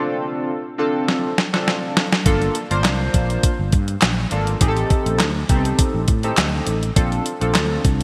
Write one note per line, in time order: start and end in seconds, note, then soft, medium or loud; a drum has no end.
0.00 0.50 C4 loud
0.00 0.50 D4 medium
0.00 0.51 F4 medium
0.00 0.51 A4 loud
0.78 1.29 C4 medium
0.78 1.29 D4 medium
0.78 1.29 F4 medium
0.78 1.30 A4 loud
1.08 snare medium
1.38 snare medium
1.53 2.03 C4 medium
1.53 2.03 D4 medium
1.53 2.03 F4 medium
1.53 2.03 A4 medium
1.53 snare medium
1.68 snare medium
1.97 snare loud
2.12 snare loud
2.25 2.48 G1 loud
2.25 2.56 A#3 medium
2.25 2.56 D4 medium
2.25 2.56 F4 medium
2.25 2.56 A4 loud
2.25 kick loud
2.25 closed hi-hat medium
2.42 closed hi-hat soft
2.55 closed hi-hat medium
2.70 2.85 G1 medium
2.70 3.50 A#3 medium
2.70 3.50 D4 medium
2.70 3.50 F4 medium
2.70 3.51 C5 loud
2.70 closed hi-hat medium
2.84 3.07 C2 loud
2.84 snare loud
2.84 clap medium
2.84 closed hi-hat medium
3.14 3.36 A#1 medium
3.14 kick loud
3.14 closed hi-hat medium
3.30 closed hi-hat medium
3.43 kick loud
3.43 closed hi-hat loud
3.59 3.70 G1 medium
3.72 3.95 G2 loud
3.72 kick loud
3.72 closed hi-hat medium
3.88 closed hi-hat soft
4.02 4.24 A#1 medium
4.02 snare loud
4.02 clap medium
4.02 closed hi-hat medium
4.31 4.54 G#1 medium
4.31 4.52 A#3 medium
4.31 4.52 D4 medium
4.31 4.52 F4 medium
4.31 4.53 A4 medium
4.31 closed hi-hat medium
4.47 closed hi-hat medium
4.61 4.83 A1 loud
4.61 5.21 C4 medium
4.61 5.21 D#4 medium
4.61 5.21 G4 medium
4.61 4.68 G#4 medium
4.61 kick loud
4.61 closed hi-hat loud
4.68 5.25 A4 loud
4.77 closed hi-hat soft
4.90 kick loud
4.90 closed hi-hat medium
5.06 5.20 A1 loud
5.06 closed hi-hat medium
5.20 5.42 D2 medium
5.20 snare loud
5.20 clap medium
5.20 closed hi-hat medium
5.49 5.71 C2 loud
5.49 5.56 B3 medium
5.49 6.00 D#4 medium
5.49 6.00 G4 medium
5.49 6.00 A4 medium
5.49 kick loud
5.49 closed hi-hat medium
5.55 6.03 C4 loud
5.65 closed hi-hat medium
5.79 kick loud
5.79 closed hi-hat loud
5.94 6.05 A1 loud
6.08 6.30 A2 loud
6.08 kick loud
6.08 closed hi-hat medium
6.23 6.73 C4 medium
6.23 6.73 D#4 medium
6.23 6.73 G4 medium
6.23 6.74 A4 loud
6.23 closed hi-hat soft
6.37 6.60 D2 loud
6.37 snare loud
6.37 clap medium
6.37 closed hi-hat medium
6.67 6.89 A1 loud
6.67 closed hi-hat medium
6.83 closed hi-hat medium
6.96 7.18 A#1 loud
6.96 7.26 C4 loud
6.96 7.26 D4 medium
6.96 7.26 F4 medium
6.96 7.27 A4 loud
6.96 kick loud
6.96 closed hi-hat loud
7.12 closed hi-hat soft
7.26 closed hi-hat medium
7.41 7.52 A#1 loud
7.41 8.03 C4 medium
7.41 8.03 D4 medium
7.41 8.03 F4 medium
7.41 8.03 A4 loud
7.41 closed hi-hat medium
7.55 7.77 D2 loud
7.55 snare loud
7.55 clap medium
7.55 closed hi-hat medium
7.85 8.03 C2 loud
7.85 kick loud
7.85 closed hi-hat medium